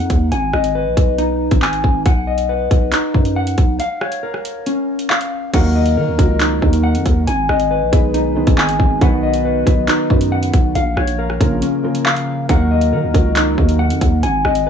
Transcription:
Already playing: D#4 A#4 D#5 F#5
0.10 D#2, kick, closed hi-hat
0.32 G#1 G#5, closed hi-hat
0.53 G#1 D#5, cross-stick
0.64 closed hi-hat
0.75 B4
0.86 A#1
0.97 B1, kick, closed hi-hat
1.18 D#4, closed hi-hat
1.51 G#1, kick, closed hi-hat
1.62 G#5, clap
1.73 closed hi-hat
1.84 G#1, kick
2.06 B1 F#5, kick, closed hi-hat
2.27 D#5
2.38 closed hi-hat
2.49 B4
2.71 B1, kick, closed hi-hat
2.92 D#4, clap, closed hi-hat
3.14 F#2, kick
3.25 closed hi-hat
3.36 F#5
3.47 closed hi-hat
3.58 B1, kick, closed hi-hat
3.80 F5, closed hi-hat
4.01 C#5, cross-stick
4.12 closed hi-hat
4.23 A#4
4.34 cross-stick
4.45 closed hi-hat
4.66 C#4, closed hi-hat
4.99 closed hi-hat
5.10 F5, clap
5.21 closed hi-hat
5.53 D#2 D#3 F#3 A#3 F#4 A#4 F#5, kick, closed hi-hat, crash
5.75 D#5
5.86 closed hi-hat
5.97 D#3 A#4
6.08 D#2
6.18 C#2 D#3 F#3 A#3 F#4 A#4, kick, closed hi-hat
6.40 D#4, clap, closed hi-hat
6.62 D#2 D#3 F#3 A#3 F#4 A#4, kick
6.73 closed hi-hat
6.83 F#5
6.95 F2, closed hi-hat
7.06 D#2, kick, closed hi-hat
7.27 G#1 G#5, closed hi-hat
7.49 G#1 D#5, cross-stick
7.60 closed hi-hat
7.71 B4
7.82 A#1
7.92 B1 D#3 G#3 B3 G#4 B4, kick, closed hi-hat
8.14 D#4, closed hi-hat
8.35 D#3 G#3 B3 G#4 B4
8.47 G#1, kick, closed hi-hat
8.58 D#5 G#5, clap
8.69 closed hi-hat
8.80 G#1, kick
9.01 B1 D#3 F#3 B3 F#4 B4 F#5, kick, closed hi-hat
9.23 D#5
9.34 closed hi-hat
9.45 B4
9.66 B1 D#3 F#3 B3 F#4 B4, kick, closed hi-hat
9.88 D#4, clap, closed hi-hat
10.09 F#2 D#3 F#3 B3 F#4 B4, kick
10.21 closed hi-hat
10.32 F#5
10.43 closed hi-hat
10.53 B1, kick, closed hi-hat
10.75 A#1 F5, closed hi-hat
10.97 A#1 C#5, cross-stick
11.07 closed hi-hat
11.19 A#4
11.30 cross-stick
11.40 A#1 C#3 F3 A#3 F4 A#4, kick, closed hi-hat
11.62 C#4, closed hi-hat
11.83 C#3 F3 A#3 F4 A#4
11.95 closed hi-hat
12.06 F5, clap
12.17 closed hi-hat
12.49 D#2 D#3 F#3 A#3 F#4 A#4 F#5, kick, closed hi-hat
12.71 D#5
12.81 closed hi-hat
12.93 D#3 A#4
13.04 D#2
13.14 C#2 D#3 F#3 A#3 F#4 A#4, kick, closed hi-hat
13.36 D#4, clap, closed hi-hat
13.57 D#2 D#3 F#3 A#3 F#4 A#4, kick
13.69 closed hi-hat
13.79 F#5
13.90 F2, closed hi-hat
14.01 D#2, kick, closed hi-hat
14.23 G#1 G#5, closed hi-hat
14.45 G#1 D#5, cross-stick
14.55 closed hi-hat
14.67 B4

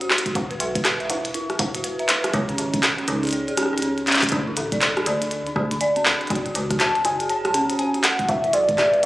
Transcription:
Already playing: F#1
0.01 F#4, closed hi-hat
0.11 cross-stick, clap
0.18 closed hi-hat
0.26 F#4, kick, closed hi-hat
0.35 E1 F#4, kick, closed hi-hat
0.51 B4, closed hi-hat
0.60 B1 E5, closed hi-hat
0.75 B4, kick, closed hi-hat
0.85 E4, cross-stick, clap, closed hi-hat
1.00 E5, closed hi-hat
1.10 E1 E4, closed hi-hat
1.25 closed hi-hat
1.34 E4, closed hi-hat
1.50 cross-stick, closed hi-hat
1.59 E1 E4, kick, closed hi-hat
1.75 F#4, closed hi-hat
1.84 B4, closed hi-hat
1.99 E5, closed hi-hat
2.09 B4, clap, closed hi-hat
2.24 E4, cross-stick, closed hi-hat
2.34 C#2 C#5, kick, closed hi-hat
2.49 C#4, closed hi-hat
2.58 G#1, closed hi-hat
2.74 C#4, kick, closed hi-hat
2.83 cross-stick, clap, closed hi-hat
2.98 C#4, closed hi-hat
3.08 C#2 D#4, closed hi-hat
3.23 G#4, closed hi-hat
3.25 closed hi-hat
3.27 closed hi-hat
3.29 closed hi-hat
3.31 closed hi-hat
3.33 C#5, closed hi-hat
3.48 G#1 G#4, closed hi-hat
3.57 C#4, cross-stick, closed hi-hat
3.63 cross-stick
3.66 cross-stick
3.73 C#2 C#5, cross-stick
3.78 cross-stick, closed hi-hat
3.82 C#4, closed hi-hat
3.98 closed hi-hat
4.07 C#4, clap, closed hi-hat
4.10 clap, closed hi-hat
4.13 clap, closed hi-hat
4.16 clap
4.19 kick, cross-stick, clap, closed hi-hat
4.24 closed hi-hat
4.29 closed hi-hat
4.32 D2 D4, kick, closed hi-hat
4.47 E4
4.57 A1 A4, closed hi-hat
4.72 D5, kick, closed hi-hat
4.82 A4, clap, closed hi-hat
4.97 D4, cross-stick, closed hi-hat
5.06 D2 D5, closed hi-hat
5.22 D4, closed hi-hat
5.31 closed hi-hat
5.47 D4, closed hi-hat
5.56 D2, kick, cross-stick
5.71 D4, closed hi-hat
5.81 D5, closed hi-hat
5.96 C4, closed hi-hat
6.06 C2 D4, clap
6.21 D5, closed hi-hat
6.27 F#1 F#4, kick, closed hi-hat
6.30 closed hi-hat
6.35 closed hi-hat
6.46 F#4, closed hi-hat
6.55 C#2 F#4, closed hi-hat
6.70 kick, cross-stick, closed hi-hat
6.80 F#4 A5, clap, closed hi-hat
6.95 closed hi-hat
7.05 F#1 F#4 G#5, closed hi-hat
7.20 G#4, closed hi-hat
7.29 C#5 A5, closed hi-hat
7.45 C#2 F#5, cross-stick, closed hi-hat
7.54 C#4, closed hi-hat
7.70 F#1 F#4, closed hi-hat
7.79 F#4 G#5, closed hi-hat
7.94 F#4, closed hi-hat
8.04 F#5, cross-stick, clap, closed hi-hat
8.19 F#4, kick, closed hi-hat
8.29 E1 E5, kick, closed hi-hat
8.44 E4, closed hi-hat
8.53 B1 F#4 D5, closed hi-hat
8.69 B4, kick, closed hi-hat
8.71 kick
8.73 kick
8.74 kick
8.76 E5, kick, cross-stick, clap, closed hi-hat
8.94 B4, closed hi-hat

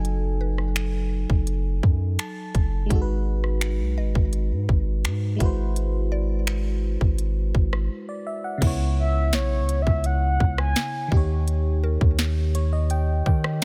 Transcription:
Already playing: F#1 F#3 D#4 A4 G#5
0.05 closed hi-hat
0.41 B4
0.58 cross-stick
0.76 finger snap, closed hi-hat
1.30 F#1, kick
1.47 closed hi-hat
1.83 F#2, kick
2.19 A5, finger snap, closed hi-hat
2.55 F#1, kick, closed hi-hat
2.86 G#3 D#4
2.90 G#1 F#4, kick, closed hi-hat
2.95 A4
3.02 B4
3.44 cross-stick
3.61 finger snap, closed hi-hat
3.80 B1
3.98 G#1 D#5
4.15 G#1, kick
4.33 closed hi-hat
4.52 G#2
4.69 G#1, kick
5.05 G#2, finger snap, closed hi-hat
5.36 G#3 E4, kick, closed hi-hat
5.41 G#1 F#4 B4
5.45 C5
5.76 closed hi-hat
6.12 D5
6.47 finger snap, closed hi-hat
7.01 G#1, kick
7.18 closed hi-hat
7.55 G#1, kick
7.73 cross-stick
8.09 D5
8.27 E5
8.44 F#5
8.58 C#3 B3
8.62 C#2 E4, kick, closed hi-hat, crash
8.67 C#5
8.99 E5
9.33 B1 C#5, snare, closed hi-hat
9.61 C#2
9.69 closed hi-hat
9.82 E5
9.87 C#2, kick
10.04 F#5, closed hi-hat
10.40 C#2, kick
10.58 G#5, cross-stick
10.76 snare, closed hi-hat
11.08 D#3 D#4, kick
11.12 D#2 G4
11.17 C#5
11.48 closed hi-hat
11.84 A#4
12.01 D#2, kick
12.19 snare, closed hi-hat
12.55 C#5, closed hi-hat
12.73 D#5
12.90 G5, closed hi-hat
13.26 D#3 G4 G5, kick
13.44 cross-stick

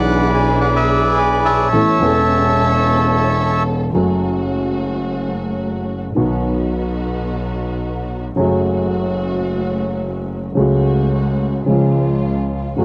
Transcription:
Already playing: B1 B2 E3 B3 D4 E4 G#4 B4 D5 F#5
0.34 G#5
0.60 B4 D5 F#5
0.75 G#4 B4 E5
1.18 G#5
1.32 B5
1.45 C#5 E5 A5
1.72 A1 A2 E3 B3 C#4 A4
1.99 E1 E2 E3 B3 C#4 A4
2.04 A4
3.93 F#1 F#2 F#3 A3 C#4 F#4
3.97 A4
6.15 B1 B2 D#3 F#3 B3 D#4 F#4
8.36 F#1 F#2 C#3 F#3 A3 C#4 F#4
8.40 F#4
10.55 C#2 C#3 F#3 A3 C#4 F#4
10.59 F#4
11.65 C#2 C#3 F3 G#3 C#4 F4
11.70 F4
12.76 F#1 F#2 C#3 F#3 A3 C#4 F#4
12.80 F#4

